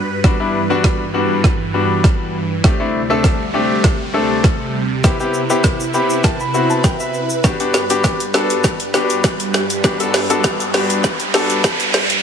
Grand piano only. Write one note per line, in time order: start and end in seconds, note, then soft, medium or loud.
0.24 0.35 G3 medium
0.24 0.35 B3 medium
0.24 0.35 D4 medium
0.24 0.35 F#4 medium
0.40 0.60 G3 medium
0.40 0.60 B3 medium
0.40 0.60 D4 medium
0.40 0.60 E4 medium
0.70 1.01 G3 medium
0.70 1.01 B3 medium
0.70 1.01 D4 medium
0.70 1.01 F#4 loud
1.14 1.56 G3 medium
1.14 1.56 B3 medium
1.14 1.56 D4 medium
1.14 1.56 F#4 medium
1.74 2.36 G3 medium
1.74 2.36 B3 medium
1.74 2.36 D4 medium
1.74 2.36 F#4 medium
2.64 2.75 A3 medium
2.64 2.75 C4 medium
2.64 2.75 D4 medium
2.64 2.75 G4 medium
2.80 3.00 A3 medium
2.80 3.00 C4 medium
2.80 3.00 D4 medium
2.80 3.00 E4 medium
3.10 3.41 A3 medium
3.10 3.41 C4 medium
3.10 3.41 D4 medium
3.10 3.41 A4 loud
3.54 3.96 A3 medium
3.54 3.96 C4 medium
3.54 3.96 D4 medium
3.54 3.96 G4 medium
4.14 4.76 A3 medium
4.14 4.76 C4 medium
4.14 4.76 D4 medium
4.14 4.76 A4 medium
5.04 5.15 B3 medium
5.04 5.15 C4 medium
5.04 5.15 E4 medium
5.04 5.15 G4 medium
5.20 5.40 B3 medium
5.20 5.40 C4 medium
5.20 5.40 E4 medium
5.20 5.40 G4 medium
5.50 5.81 B3 medium
5.50 5.81 C4 medium
5.50 5.81 E4 medium
5.50 5.81 G4 loud
5.94 6.36 B3 medium
5.94 6.36 C4 medium
5.94 6.36 E4 medium
5.94 6.36 G4 medium
5.94 6.22 B5 medium
6.24 6.39 A5 medium
6.40 6.68 B5 medium
6.54 7.16 B3 medium
6.54 7.16 C4 medium
6.54 7.16 E4 medium
6.54 7.16 F#4 medium
6.70 6.83 A5 medium
6.84 6.99 G5 medium
7.00 7.41 E5 medium
7.44 7.55 B3 medium
7.44 7.55 D4 medium
7.44 7.55 F#4 medium
7.44 7.55 G4 medium
7.60 7.80 B3 medium
7.60 7.80 D4 medium
7.60 7.80 F#4 medium
7.60 7.80 G4 medium
7.90 8.21 B3 medium
7.90 8.21 D4 medium
7.90 8.21 F#4 medium
7.90 8.21 G4 loud
8.34 8.76 B3 medium
8.34 8.76 D4 medium
8.34 8.76 F#4 medium
8.34 8.76 A4 medium
8.94 9.56 B3 medium
8.94 9.56 D4 medium
8.94 9.56 F#4 medium
8.94 9.56 G4 medium
9.84 9.95 B3 medium
9.84 9.95 D4 medium
9.84 9.95 F#4 medium
9.84 9.95 G4 medium
10.00 10.20 B3 medium
10.00 10.20 D4 medium
10.00 10.20 F#4 medium
10.00 10.20 A4 medium
10.30 10.61 B3 medium
10.30 10.61 D4 medium
10.30 10.61 F#4 medium
10.30 10.61 A4 loud
10.74 11.16 B3 medium
10.74 11.16 D4 medium
10.74 11.16 F#4 medium
10.74 11.16 G4 medium
11.34 11.96 B3 medium
11.34 11.96 D4 medium
11.34 11.96 F#4 medium
11.34 11.96 A4 loud